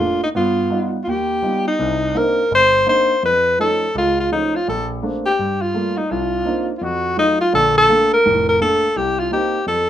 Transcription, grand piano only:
0.00 A3 A#3 D4
0.35 G2 B3
0.70 G3 B3 D#4 F4
1.07 D#2
1.42 G3 B3 D#4 F4
1.79 C2 C3
2.15 A#3 C4 D4 D#4
2.51 G1
2.86 A#3 C4 D4 D#4
3.23 F2
3.59 F3 A3 C#4 D#4
3.95 C#2
4.32 F3 A3 C#4 D#4
4.68 A#1
5.03 A3 A#3 C4 D4
5.39 G2
5.74 G3 A3 A#3 F4
6.11 C2
6.46 A#3 C4 D4 D#4
6.81 F2
7.17 F#3 A3 D#4 F4
7.53 A#1 D3
7.89 A3 A#3 D4
8.26 F1 A2
8.60 A3 A#3 D4
8.96 C2
9.31 A#3 C4 D#4
9.66 F2

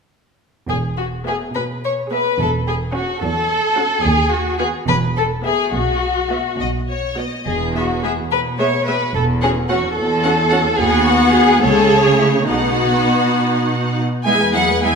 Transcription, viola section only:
1.26 B3 G#4
2.12 B3 G#4
2.95 C#4 F#4
3.76 C#4 F#4
4.59 B3 F#4
5.44 B3 G#4
6.31 B3 F#4
7.18 B3 F#4
7.75 B3 G#4
8.03 B3 G#4
8.59 B3 G#4
8.88 B3 G#4
9.43 C#4 F#4
9.70 C#4 F#4
10.25 C#4 F#4
10.51 C#4 F#4
10.78 B3 F#4
11.62 G#3 G#4
12.05 A3
12.49 B3 D#4
14.26 B3 E4
14.40 G#3 G#4
14.55 B3 E4
14.69 G#3 G#4
14.83 B3 E4

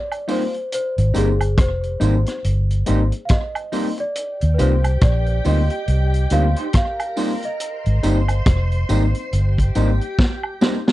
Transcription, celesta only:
Already playing: D5
0.31 C5
0.74 C5
1.17 G#4
1.61 C5
3.25 F5
3.32 D#5
4.00 D5
4.54 B4
4.61 C5
5.04 D5
5.48 D#5
6.33 F5
6.77 F5
7.45 D#5

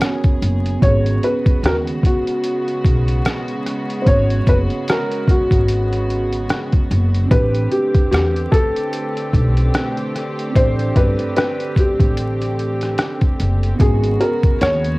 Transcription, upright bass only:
0.42 F#1
0.82 G#1
1.63 D#2
2.85 B1
4.07 G#1
4.47 F#1
5.51 G#1
6.91 F#1
7.31 A1
8.12 E2
9.34 B1
10.56 A1
10.96 G1
12.00 A1
13.40 F#1
13.80 G#1
14.62 D#2

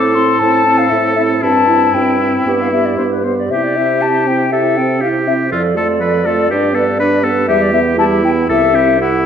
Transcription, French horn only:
Already playing: C4
0.17 C4
0.41 C4
0.67 C4
0.92 C4
1.17 C4
1.43 C4
1.68 C4
1.94 C4
2.20 C4
2.46 B3
2.72 B3
2.99 B3
3.25 B3
3.52 E4
3.77 C4
4.02 E4
4.27 C4
4.53 E4
4.78 C4
5.03 E4
5.27 C4
5.52 F3
5.76 A3
6.00 F3
6.25 A3
6.50 D4
6.74 B3
7.00 D4
7.23 B3
7.48 G3
7.73 B3
7.98 G3
8.23 B3
8.48 E4
8.74 C4
9.00 E4

